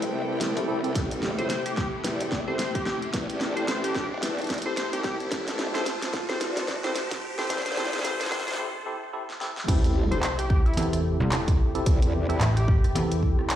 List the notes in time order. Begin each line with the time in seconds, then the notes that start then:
Already playing: C2 C3 A3 C4 E4 G4 A4 B4 G5, riser
0.02 closed hi-hat
0.41 snare, closed hi-hat
0.57 C4 E4 G4 A4, closed hi-hat
0.68 C2 C4 E4 G4 A4
0.84 C4 E4 G4 A4, closed hi-hat
0.95 A1 G4, kick, snare, closed hi-hat
1.11 closed hi-hat
1.23 snare
1.32 G#1
1.38 C4 E4 G4 A4 C5, closed hi-hat
1.50 C5, snare, closed hi-hat
1.66 G4, closed hi-hat
1.77 G4, kick, snare
2.04 E2, snare, closed hi-hat
2.20 closed hi-hat
2.32 kick, snare
2.48 C2 C4 E4 G4 A4 C5
2.59 C5, snare, closed hi-hat
2.75 G4, kick, closed hi-hat
2.86 G4, snare
3.02 closed hi-hat
3.13 E2, kick, snare, closed hi-hat
3.30 A5, closed hi-hat
3.41 snare
3.56 C4 E4 G4 A4 C5, closed hi-hat
3.68 A1 C5, snare, closed hi-hat
3.84 G4, closed hi-hat
3.95 G4, kick, snare
4.23 E2, snare, closed hi-hat
4.39 closed hi-hat
4.42 closed hi-hat
4.44 closed hi-hat
4.47 kick, snare, closed hi-hat
4.50 closed hi-hat
4.54 closed hi-hat
4.58 closed hi-hat
4.62 C4 E4 G4 A4 C5, closed hi-hat
4.77 C5, snare, closed hi-hat
4.93 C2 G4, closed hi-hat
5.04 G4, kick, snare
5.20 C2, closed hi-hat
5.32 A1 C5, kick, snare, closed hi-hat
5.48 snare, closed hi-hat
5.59 snare
5.74 C4 E4 G4 A4 C5, snare, closed hi-hat
5.86 snare, closed hi-hat
6.02 snare, closed hi-hat
6.13 kick, snare
6.29 C4 E4 G4 A4 C5, snare
6.41 E2, snare, closed hi-hat
6.57 snare, closed hi-hat
6.68 kick, snare
6.84 C2 C4 E4 G4 A4 C5, snare
6.96 snare, closed hi-hat
7.11 kick, snare, closed hi-hat
7.38 C4 E4 G4 A4 C5, snare, closed hi-hat
7.42 closed hi-hat
7.44 closed hi-hat
7.47 E2 C4 E4 G4 A4 C5, kick, snare, closed hi-hat
7.50 closed hi-hat
7.58 snare, closed hi-hat
7.62 C5, snare, closed hi-hat
7.66 closed hi-hat
7.72 snare
7.77 C4 E4 G4 A4 C5, snare
7.85 snare
7.93 C5, snare, closed hi-hat
7.99 snare
8.04 A1 C4 E4 G4 A4 C5, snare, closed hi-hat
8.20 C5, snare, closed hi-hat
8.26 snare
8.31 C4 E4 G4 A4 C5, kick, snare
8.40 snare
8.48 C5, snare, closed hi-hat
8.53 snare
8.59 C4 E4 G4 A4
8.86 C4 E4 G4 A4
9.13 C4 E4 G4 A4
9.30 snare
9.41 C4 E4 G4 A4, snare
9.57 snare
9.68 A1 C3 A3 C4 E4 G4 A4, kick, closed hi-hat, crash, sub drop
9.84 closed hi-hat
10.11 C4 E4 G4 A4 C5, closed hi-hat
10.22 C5, clap, closed hi-hat
10.39 G4, closed hi-hat
10.49 G4, kick
10.66 E4, closed hi-hat
10.74 E2 C4 E4 G4 A4, closed hi-hat
10.77 closed hi-hat
10.93 cross-stick, closed hi-hat
11.20 C2
11.32 clap, closed hi-hat
11.48 kick, closed hi-hat
11.75 C4 E4 G4 A4, closed hi-hat
11.86 E2, kick, closed hi-hat
12.02 closed hi-hat
12.29 C4 E4 G4 A4, closed hi-hat
12.41 A1, clap, closed hi-hat
12.56 G4, closed hi-hat
12.68 kick
12.84 cross-stick, closed hi-hat
12.95 E2 C4 E4 G4 A4, closed hi-hat
13.12 closed hi-hat
13.23 kick
13.39 cross-stick
13.41 cross-stick
13.44 cross-stick
13.46 cross-stick
13.48 cross-stick, clap, closed hi-hat